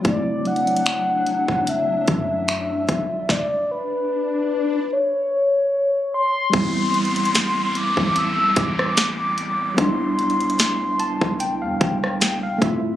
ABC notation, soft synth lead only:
X:1
M:4/4
L:1/8
Q:"Swing 16ths" 1/4=74
K:Am
V:1 name="Soft synth lead"
d ^f3 e4 | d B3 ^c3 =c'- | c'3 d' e' d'3 | c'6- c' z |]